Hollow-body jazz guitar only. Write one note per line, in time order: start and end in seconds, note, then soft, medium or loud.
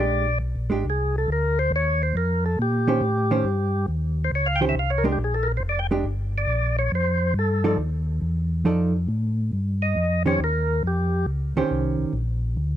0.00 0.24 G#3 medium
0.00 0.25 D4 medium
0.00 0.25 G4 medium
0.70 0.83 G#3 medium
0.70 0.84 D4 medium
0.70 0.84 G4 medium
2.87 3.00 D#3 medium
2.87 3.00 C#4 medium
2.87 3.01 G4 medium
2.87 3.01 C5 medium
3.31 3.44 D#3 medium
3.31 3.44 C#4 medium
3.31 3.44 G4 medium
3.31 3.44 C5 medium
4.61 4.74 D#3 medium
4.61 4.74 C#4 medium
4.61 4.74 G4 medium
4.61 4.74 C5 medium
5.04 5.17 G#3 medium
5.04 5.17 D4 medium
5.04 5.17 G4 medium
5.91 6.04 G#3 medium
5.91 6.04 D4 medium
5.91 6.04 G4 medium
7.64 7.77 F3 medium
7.64 7.77 D#4 medium
7.64 7.77 A4 medium
7.64 7.78 D5 medium
8.65 8.92 F3 medium
8.65 8.92 D#4 medium
8.65 8.92 A4 medium
8.65 8.93 D5 medium
10.26 10.39 D#3 medium
10.26 10.39 C#4 medium
10.26 10.39 G4 medium
10.26 10.40 C5 medium
11.57 12.12 D#3 medium
11.57 12.12 C#4 medium
11.57 12.12 G4 medium
11.57 12.13 C5 medium